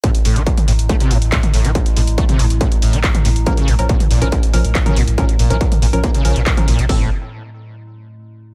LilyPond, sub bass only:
\new Staff \with { instrumentName = "Sub bass" } { \clef bass \time 4/4 \key bes \lydian \tempo 4 = 140 r8 a,,16 a,,16 r8 a,,16 a,,16 r8 a,,16 a,,16 r8 a,,16 a,,16 | r8 a,,16 a,,16 r8 a,,16 a,,16 r8 a,,16 a,,16 r8 a,,16 a,,16 | r8 bes,,16 bes,,16 r8 bes,,16 bes,,16 r8 bes,,16 bes,,16 r8 bes,,16 bes,,16 | r8 bes,,16 bes,,16 r8 bes,,16 bes,,16 r8 bes,,16 bes,,16 r8 bes,,16 bes,,16 |
a,,8 r2. r8 | }